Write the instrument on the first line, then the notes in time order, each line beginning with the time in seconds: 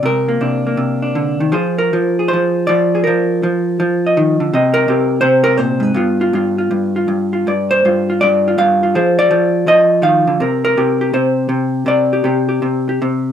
hollow-body jazz guitar
Already playing: D4
0.03 C3 A#4
0.29 A#3
0.41 C3 D4
0.67 A#3
0.77 C3
1.02 D4
1.15 D3
1.40 D#3
1.52 F3 F4 G#4 C5
1.78 A#4
1.93 F3
2.19 G#4
2.28 C5
2.33 F3
2.67 F3 D5
2.95 G#4
3.04 F3 A#4
3.43 F3
3.80 F3
4.07 D#5
4.17 D#3
4.40 D3
4.53 C3 D#5
4.74 A#4
4.88 C3 G4
5.21 C3 C5
5.44 A#4
5.57 A#2 C5
5.80 G#2 B4
5.94 G2 B3 F4
6.21 F4
6.33 G2 F4
6.58 F4
6.71 G2
6.96 F4
7.08 G2
7.33 F4
7.47 G2 D5
7.71 C5
7.85 G2 F4
8.10 F4
8.21 G2 D5
8.48 F4
8.58 G2 F5
8.83 F4
8.95 F3 G#4 C5 F5
9.19 D5
9.31 F3
9.67 F3 D#5
10.02 D#3 F5
10.27 D3
10.40 C3 A#4
10.65 A#4
10.77 C3 G4
11.01 G4
11.13 C3 C5
11.49 C3
11.86 C3 D5
12.13 G4
12.24 C3 G4
12.49 G4
12.62 C3
12.89 G4
13.02 C3